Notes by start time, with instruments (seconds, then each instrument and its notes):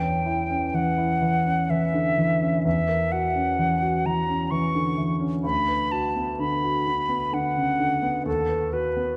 Already playing: grand piano E2, flute G5
0.04 grand piano C#5
0.26 grand piano E4
0.50 grand piano C#4
0.74 grand piano E3, flute F#5
0.98 grand piano E4
1.22 grand piano E3
1.45 grand piano C#4
1.70 grand piano E3, flute E5
1.94 grand piano D3
2.18 grand piano E3
2.42 grand piano C#4
2.65 grand piano E2, flute E5
2.89 grand piano A#4
3.12 grand piano F#4, flute F#5
3.35 grand piano C#4
3.59 grand piano E3
3.82 grand piano F#4
4.06 grand piano E3, flute A#5
4.29 grand piano C#4
4.51 grand piano E3, flute C#6
4.75 grand piano D3
4.97 grand piano E3
5.20 grand piano C#4
5.44 grand piano D2, flute B5
5.68 grand piano B4
5.92 grand piano F#4, flute A5
6.16 grand piano B3
6.39 grand piano D3, flute B5
6.63 grand piano F#4
6.87 grand piano D3
7.09 grand piano B3
7.33 grand piano D3, flute F#5
7.57 grand piano C#3
7.79 grand piano D3
8.03 grand piano B3
8.26 grand piano D#2, flute A4
8.49 grand piano B4
8.72 grand piano F#4, flute B4
8.97 grand piano B3